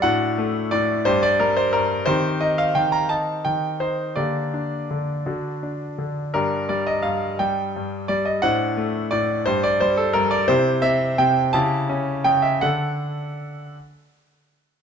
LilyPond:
<<
  \new Staff \with { instrumentName = "Grand piano" } { \time 6/8 \key g \minor \tempo 4. = 57 << { fis''4 d''8 c''16 d''16 bes'16 c''16 bes'8 | c''8 ees''16 f''16 g''16 bes''16 a''8 g''8 c''8 | d''2~ d''8 r8 | bes'8 d''16 ees''16 f''8 g''4 d''16 ees''16 |
fis''4 d''8 c''16 d''16 c''16 a'16 bes'16 d''16 | \key d \mixolydian c''8 e''8 g''8 a''4 g''16 e''16 | fis''4. r4. | } \\ { <d' fis'>4. <d' g'>4. | <c' g'>2. | <bes g'>4. <d' fis'>4. | <d' g'>2. |
<d' c''>4. <d' g'>4. | <e' g'>4. <e' g'>4. | r2. | } >> }
  \new Staff \with { instrumentName = "Grand piano" } { \clef bass \time 6/8 \key g \minor a,8 a8 a,8 g,8 g8 g,8 | ees8 ees'8 ees8 ees'8 ees8 ees'8 | d8 d'8 d8 d8 d'8 d8 | g,8 g8 g,8 g8 g,8 g8 |
a,8 a8 a,8 g,8 g8 g,8 | \key d \mixolydian c8 c'8 c8 cis8 cis'8 cis8 | <d d' a'>4. r4. | }
>>